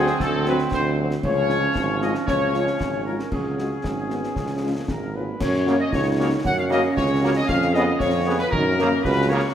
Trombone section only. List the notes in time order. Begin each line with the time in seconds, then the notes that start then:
Already playing: F#3 C4
1.23 F3 C#4
3.32 F#3 C#4
4.37 F3
5.66 C#3 A#3
6.19 C#3 A#3
6.70 C#3 A#3
7.23 C#3 A#3
7.75 C#3 B3
8.26 C#3 B3
8.79 C#3 A#3
9.31 C#3 A#3